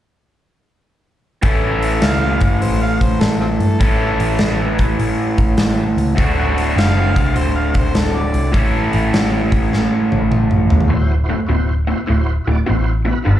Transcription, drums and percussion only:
1.43 kick, open hi-hat
1.82 open hi-hat
2.02 snare, open hi-hat
2.40 kick, open hi-hat
2.62 open hi-hat
3.01 kick, open hi-hat
3.21 snare, open hi-hat
3.60 open hi-hat
3.81 kick, open hi-hat
4.20 open hi-hat
4.39 snare, open hi-hat
4.79 kick, open hi-hat
4.99 open hi-hat
5.38 kick, open hi-hat
5.57 snare, open hi-hat
5.98 open hi-hat
6.18 kick, open hi-hat
6.58 open hi-hat
6.78 snare, open hi-hat
7.16 kick, open hi-hat
7.36 open hi-hat
7.74 kick, open hi-hat
7.95 snare, open hi-hat
8.34 open hi-hat
8.54 kick, open hi-hat
8.93 open hi-hat
9.14 snare, open hi-hat
9.52 kick, open hi-hat
9.73 snare
10.12 high tom
10.32 mid tom
10.51 mid tom
10.70 floor tom
10.80 floor tom

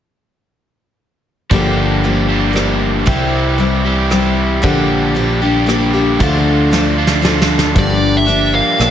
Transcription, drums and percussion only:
1.51 kick
2.56 cross-stick
3.07 kick
4.11 cross-stick
4.64 kick
5.69 cross-stick
6.20 kick
6.73 snare
7.07 snare
7.25 snare
7.42 snare
7.59 snare
7.76 kick, closed hi-hat
8.28 closed hi-hat
8.80 cross-stick, closed hi-hat

